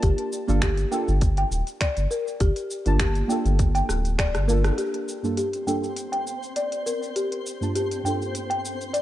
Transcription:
Already playing: A#3 D4 F4 A5
0.03 G1 G4, kick, closed hi-hat, shaker
0.18 closed hi-hat
0.33 shaker
0.48 G1 A#3 D4 F4 A4, shaker
0.62 G4, finger snap, kick, closed hi-hat, shaker
0.77 closed hi-hat, shaker
0.91 A#3 D4 F4 A4 G5, shaker
1.08 G1, shaker
1.21 kick, closed hi-hat, shaker
1.37 G5, closed hi-hat
1.51 D1, shaker
1.67 closed hi-hat, shaker
1.81 D5, finger snap, kick, closed hi-hat, shaker
1.97 G1, closed hi-hat, shaker
2.11 A#4, shaker
2.28 shaker
2.40 G1 G4, kick, closed hi-hat, shaker
2.56 closed hi-hat, shaker
2.71 shaker
2.86 G1 A#3 D4 F4 A5, closed hi-hat, shaker
3.00 G4, finger snap, kick, closed hi-hat, shaker
3.15 closed hi-hat, shaker
3.28 A#3 D4 F4 G5, shaker
3.32 A4
3.45 G1, closed hi-hat, shaker
3.59 kick, closed hi-hat, shaker
3.75 G5, closed hi-hat, shaker
3.89 D1, cross-stick, shaker
4.05 closed hi-hat, shaker
4.19 D5, finger snap, kick, cross-stick, closed hi-hat, shaker
4.35 G1, cross-stick, closed hi-hat, shaker
4.47 A#3 D4 F4 A4 A#4, shaker
4.64 cross-stick, closed hi-hat, shaker
4.78 C4 G4 C5, closed hi-hat, shaker
4.94 closed hi-hat
5.09 shaker
5.23 G2 A#3 D4 F4 A4, shaker
5.37 G4, closed hi-hat, shaker
5.53 closed hi-hat, shaker
5.66 G2 A#3 D4 F4 A4 G5, shaker
5.84 shaker
5.97 closed hi-hat, shaker
6.12 G5, closed hi-hat
6.27 shaker
6.43 shaker
6.56 D5, closed hi-hat, shaker
6.72 closed hi-hat, shaker
6.86 A#4, shaker
7.03 shaker
7.16 G4, closed hi-hat, shaker
7.32 closed hi-hat
7.46 shaker
7.61 G2 A#3 D4 F4 A5, shaker
7.75 G4, closed hi-hat, shaker
7.91 closed hi-hat, shaker
8.04 G2 A#3 D4 F4 G5, shaker
8.08 A4
8.22 shaker
8.35 closed hi-hat, shaker
8.50 G5, closed hi-hat
8.65 shaker
8.81 shaker
8.93 D5, closed hi-hat, shaker

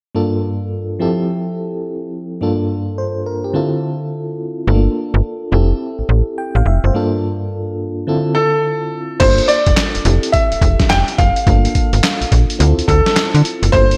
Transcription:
0.15 G2 A#3 D4 F4 A4
0.99 F3 C4 E4 G4 A4
2.41 G2 A#3 D4 F4 A4
2.98 C5
3.26 A#4
3.44 G4
3.53 D3 C4 E4 F4 A4
4.67 G1 A3 D4 F4 A4
4.74 A#3
5.14 G1
5.52 F1 C4 E4 G4 A4
5.99 A1
6.09 A1
6.38 G5
6.55 A1 F5
6.66 F1 E5
6.84 F#1 C5
6.94 G2 A#3 D4 F4 A4
8.07 D3 C4 E4 F4 A4
8.35 A4
9.20 G1 A#3 D4 F4 A4 C5, kick, closed hi-hat, crash
9.38 closed hi-hat
9.48 D5, closed hi-hat
9.67 F1, kick, closed hi-hat
9.77 snare, clap, closed hi-hat
9.95 F1, closed hi-hat
10.05 F1 C4 E4 G4 A4, closed hi-hat
10.23 closed hi-hat
10.32 E5, kick, closed hi-hat
10.52 E1, closed hi-hat
10.61 E1, kick, closed hi-hat
10.80 kick, snare, closed hi-hat
10.90 F1 G5, snare, clap, closed hi-hat
11.08 closed hi-hat
11.18 F#1 F5, kick, closed hi-hat
11.36 closed hi-hat
11.46 G1 A3 D4 F4 A4, kick, closed hi-hat
11.53 A#3
11.65 closed hi-hat
11.75 kick, closed hi-hat
11.93 G1, closed hi-hat
12.04 snare, clap, closed hi-hat
12.21 A#1, closed hi-hat
12.32 A#1, kick, closed hi-hat
12.50 closed hi-hat
12.59 D2 C4 E4 F4 A4, closed hi-hat
12.78 D2, closed hi-hat
12.88 D2 A4, kick, closed hi-hat
13.06 snare, closed hi-hat
13.16 snare, clap, closed hi-hat
13.34 D3, closed hi-hat
13.45 closed hi-hat
13.63 F#1, closed hi-hat
13.72 G1 A#3 D4 F4 A4 C5, kick, closed hi-hat
13.91 closed hi-hat

